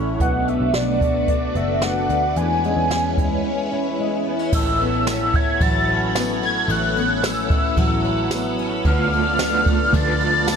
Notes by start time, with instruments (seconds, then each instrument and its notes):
Already playing: picked electric bass A1, twelve-string acoustic guitar A2 A3 C#4 E4, string machine A3 C#4 E4 C#5 F#5
0.18 picked electric bass B1, twelve-string acoustic guitar B2, string machine A3 D4 F#4 B4 D5, soft synth lead F#5, kick, closed hi-hat
0.47 twelve-string acoustic guitar A3, soft synth lead E5, closed hi-hat
0.60 picked electric bass B1
0.74 picked electric bass B1, twelve-string acoustic guitar D4, soft synth lead D5, snare, closed hi-hat
1.01 twelve-string acoustic guitar F#4, kick, closed hi-hat
1.28 twelve-string acoustic guitar D4, soft synth lead D5, kick, closed hi-hat
1.55 picked electric bass F#1, twelve-string acoustic guitar F#4, soft synth lead E5, closed hi-hat
1.82 twelve-string acoustic guitar A3, soft synth lead F#5, snare, closed hi-hat
2.09 picked electric bass D2, twelve-string acoustic guitar D4, closed hi-hat
2.35 picked electric bass E2, twelve-string acoustic guitar E2, string machine G#3 C#4 E4 C#5, soft synth lead G#5, closed hi-hat
2.64 twelve-string acoustic guitar G#3, closed hi-hat
2.77 picked electric bass E2
2.90 picked electric bass E2, twelve-string acoustic guitar C#4, snare, closed hi-hat
3.18 twelve-string acoustic guitar E4, kick, closed hi-hat
3.44 twelve-string acoustic guitar C#4
3.72 twelve-string acoustic guitar E4
3.98 twelve-string acoustic guitar G#3
4.25 twelve-string acoustic guitar B3
4.39 twelve-string acoustic guitar C#4
4.52 picked electric bass A1, twelve-string acoustic guitar A2, string machine A4 C#5 F#5 B5, soft synth lead E6, kick, crash
4.80 twelve-string acoustic guitar B3, ride
5.07 twelve-string acoustic guitar C#4, snare, ride, tambourine
5.34 twelve-string acoustic guitar E4, soft synth lead G#6, kick, ride
5.61 picked electric bass A1, twelve-string acoustic guitar F#3, soft synth lead A6, kick, ride
5.88 twelve-string acoustic guitar C#4, ride
6.14 twelve-string acoustic guitar B3, snare, ride, tambourine
6.42 twelve-string acoustic guitar C#4, soft synth lead G#6, ride
6.68 picked electric bass A1, twelve-string acoustic guitar A2, soft synth lead F#6, ride
6.96 twelve-string acoustic guitar B3, ride
7.23 twelve-string acoustic guitar C#4, soft synth lead E6, snare, ride, tambourine
7.50 twelve-string acoustic guitar E4, kick, ride
7.77 picked electric bass A1, twelve-string acoustic guitar F#3, kick, ride
8.04 twelve-string acoustic guitar C#4, ride
8.31 twelve-string acoustic guitar B3, snare, ride, tambourine
8.58 twelve-string acoustic guitar C#4, ride
8.85 picked electric bass D2, clean electric guitar D3 A3 D4 F4, twelve-string acoustic guitar D3, string machine D5 F5, soft synth lead F6, kick, ride
8.89 clean electric guitar B4
9.13 twelve-string acoustic guitar A3, ride
9.38 clean electric guitar A3 D4, twelve-string acoustic guitar B3, snare, ride, tambourine
9.42 clean electric guitar F4 B4
9.66 twelve-string acoustic guitar A4, kick, ride
9.89 clean electric guitar A3
9.93 picked electric bass D2, twelve-string acoustic guitar F3, clean electric guitar D4, soft synth lead A6, kick, ride
9.98 clean electric guitar F4
10.02 clean electric guitar B4
10.20 twelve-string acoustic guitar B3, ride
10.47 twelve-string acoustic guitar A3, snare, ride, tambourine